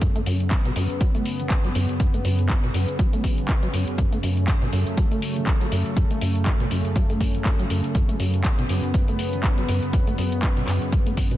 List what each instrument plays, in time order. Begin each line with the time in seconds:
Already playing: analog synth pad F#2 C#3
0.01 acid bass F#2, analog synth pad B3, kick, closed hi-hat
0.15 acid bass A3, closed hi-hat
0.26 acid bass F#2, open hi-hat
0.40 closed hi-hat
0.51 acid bass G2, kick, clap, closed hi-hat
0.65 acid bass B2, closed hi-hat
0.76 acid bass F#2, open hi-hat
0.90 closed hi-hat
1.01 acid bass F#3, kick, closed hi-hat
1.15 acid bass A3, closed hi-hat
1.26 open hi-hat
1.39 acid bass C#3, closed hi-hat
1.50 kick, clap, closed hi-hat
1.64 acid bass F#3, closed hi-hat
1.75 acid bass F#2, open hi-hat
1.89 closed hi-hat
2.00 acid bass F#2, kick, closed hi-hat
2.14 acid bass A3, closed hi-hat
2.25 acid bass F#2, open hi-hat
2.39 closed hi-hat
2.49 acid bass G2, kick, clap, closed hi-hat
2.63 acid bass B2, closed hi-hat
2.74 acid bass F#2, open hi-hat
2.88 closed hi-hat
2.99 acid bass F#3, kick, closed hi-hat
3.13 acid bass A3, closed hi-hat
3.24 kick, open hi-hat
3.38 acid bass C#3, closed hi-hat
3.49 kick, clap, closed hi-hat
3.63 acid bass F#3, closed hi-hat
3.73 acid bass F#2, open hi-hat
3.88 closed hi-hat
3.98 acid bass F#2, analog synth pad A3, kick, closed hi-hat
4.12 acid bass A3, closed hi-hat
4.23 acid bass F#2, open hi-hat
4.37 closed hi-hat
4.48 acid bass G2, kick, clap, closed hi-hat
4.62 acid bass B2, closed hi-hat
4.73 acid bass F#2, open hi-hat
4.87 closed hi-hat
4.97 acid bass F#3, kick, closed hi-hat
5.11 acid bass A3, closed hi-hat
5.22 open hi-hat
5.36 acid bass C#3, closed hi-hat
5.47 kick, clap, closed hi-hat
5.61 acid bass F#3, closed hi-hat
5.72 acid bass F#2, open hi-hat
5.86 closed hi-hat
5.97 acid bass F#2, kick, closed hi-hat
6.11 acid bass A3, closed hi-hat
6.21 acid bass F#2, open hi-hat
6.35 closed hi-hat
6.46 acid bass G2, kick, clap, closed hi-hat
6.60 acid bass B2, closed hi-hat
6.71 acid bass F#2, open hi-hat
6.85 closed hi-hat
6.96 acid bass F#3, kick, closed hi-hat
7.10 acid bass A3, closed hi-hat
7.21 kick, open hi-hat
7.34 acid bass C#3, closed hi-hat
7.45 kick, clap, closed hi-hat
7.59 acid bass F#3, closed hi-hat
7.70 acid bass F#2, open hi-hat
7.84 closed hi-hat
7.95 acid bass F#2, analog synth pad B3, kick, closed hi-hat
8.09 acid bass A3, closed hi-hat
8.20 acid bass F#2, open hi-hat
8.34 closed hi-hat
8.44 acid bass G2, kick, clap, closed hi-hat
8.59 acid bass B2, closed hi-hat
8.69 acid bass F#2, open hi-hat
8.83 closed hi-hat
8.94 acid bass F#3, kick, closed hi-hat
9.08 acid bass A3, closed hi-hat
9.19 open hi-hat
9.33 acid bass C#3, closed hi-hat
9.44 kick, clap, closed hi-hat
9.58 acid bass F#3, closed hi-hat
9.68 acid bass F#2, open hi-hat
9.83 closed hi-hat
9.93 acid bass F#2, kick, closed hi-hat
10.07 acid bass A3, closed hi-hat
10.18 acid bass F#2, open hi-hat
10.32 closed hi-hat
10.43 acid bass G2, kick, clap, closed hi-hat
10.57 acid bass B2, closed hi-hat
10.68 acid bass F#2, clap, open hi-hat
10.82 closed hi-hat
10.92 acid bass F#3, kick, closed hi-hat
11.06 acid bass A3, closed hi-hat
11.17 kick, open hi-hat
11.31 acid bass B2, closed hi-hat